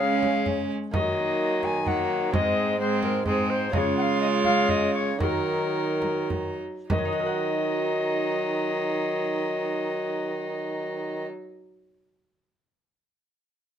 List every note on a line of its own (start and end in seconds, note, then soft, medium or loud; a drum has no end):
0.00 0.66 C#3 medium
0.00 0.70 C#3 medium
0.00 0.72 G#3 medium
0.00 0.89 G#3 medium
0.00 0.90 C#4 medium
0.00 0.72 C#4 medium
0.00 0.90 G#4 medium
0.00 0.46 F5 medium
0.23 frame drum soft
0.46 frame drum soft
0.91 2.29 D#3 medium
0.91 1.83 F#3 medium
0.91 1.83 A#3 medium
0.91 1.83 D#4 medium
0.91 1.66 D#5 loud
0.91 frame drum medium
1.63 1.89 G#5 loud
1.63 frame drum soft
1.85 2.35 F#3 medium
1.85 2.31 A#3 medium
1.85 2.34 A#3 medium
1.85 2.31 D#4 medium
1.85 2.33 F#5 medium
1.85 frame drum medium
2.30 3.70 G#2 medium
2.30 3.69 G#2 medium
2.30 3.67 G#3 medium
2.30 2.80 G#3 medium
2.30 3.68 C4 medium
2.30 2.78 C4 medium
2.30 3.69 D#4 medium
2.30 2.79 D#5 loud
2.30 frame drum medium
2.79 3.25 G#3 medium
2.79 3.25 C4 medium
2.79 3.02 C5 loud
3.03 3.25 A#4 loud
3.03 frame drum medium
3.26 3.72 G#3 medium
3.26 3.72 C4 medium
3.26 3.51 G#4 loud
3.26 frame drum medium
3.50 3.73 C5 loud
3.69 5.14 G#3 medium
3.69 5.16 G#3 medium
3.69 5.15 C#4 medium
3.69 5.15 F4 medium
3.69 5.16 F4 medium
3.69 frame drum medium
3.73 5.22 C#3 medium
3.73 5.16 C#3 medium
3.73 3.78 D#5 loud
3.77 3.96 C#5 loud
3.97 4.02 F#5 medium
4.01 4.20 F5 medium
4.20 4.26 D#5 loud
4.44 4.71 F5 loud
4.44 frame drum medium
4.69 4.93 D#5 loud
4.69 frame drum medium
4.94 5.19 C#5 loud
5.18 6.60 D#3 medium
5.18 6.56 D#3 medium
5.18 6.61 F#3 medium
5.18 6.61 D#4 medium
5.18 6.85 F#4 medium
5.18 6.28 A#4 loud
5.18 frame drum medium
6.02 frame drum medium
6.30 frame drum medium
6.89 11.27 D#3 medium
6.89 11.25 F#3 medium
6.89 11.26 D#4 medium
6.89 11.26 D#5 medium
6.89 frame drum medium
6.98 11.34 F#3 medium
7.05 11.41 D#4 medium
7.12 11.48 F#4 medium
7.19 7.26 A#4 medium
7.26 11.62 F#5 medium